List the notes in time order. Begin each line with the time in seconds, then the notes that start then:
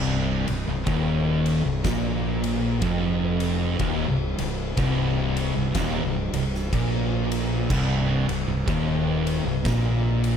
Already playing: C1 C2
0.48 C1 C2, ride
0.68 C1 C2
0.87 D#1 D#2, kick, ride
1.46 ride
1.65 C1 C2
1.84 A#1 A#2, kick, snare, ride
2.44 ride
2.82 F1 F2, kick, ride
3.40 ride
3.79 D#1 D#2, kick, ride
4.09 C1 C2
4.38 C1 C2, ride
4.77 C1 C2, kick, ride
5.37 ride
5.55 C1 C2
5.75 D#1 D#2, kick, snare, ride
6.04 C1 C2
6.33 C1 C2, ride
6.55 snare
6.72 A#1 A#2, kick, ride
7.32 ride
7.70 C1 C2, kick, crash
8.29 C1 C2, ride
8.48 C1 C2
8.67 D#1 D#2, kick, ride
9.27 ride
9.45 C1 C2
9.65 A#1 A#2, kick, snare, ride
10.24 ride